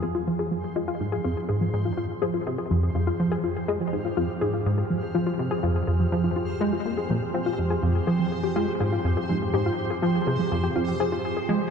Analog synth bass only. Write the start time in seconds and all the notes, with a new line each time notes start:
0.03 F2
0.27 F3
0.76 G#3
1.00 G#2
1.25 F2
1.49 G#2
1.73 G#2
2.22 F3
2.46 C3
2.71 F2
2.95 F2
3.20 F3
3.68 G#3
3.93 G#2
4.17 F2
4.42 G#2
4.66 G#2
5.15 F3
5.39 C3
5.63 F2
5.88 F2
6.12 F3
6.61 G#3
6.85 A#2
7.10 A#2
7.34 C4
7.59 F2
7.83 F2
8.07 F3
8.56 G#3
8.80 G#2
9.05 F2
9.29 G#2
9.53 G#2
10.02 F3
10.27 C3
10.51 F2
10.76 F2
11.00 F3
11.49 G#3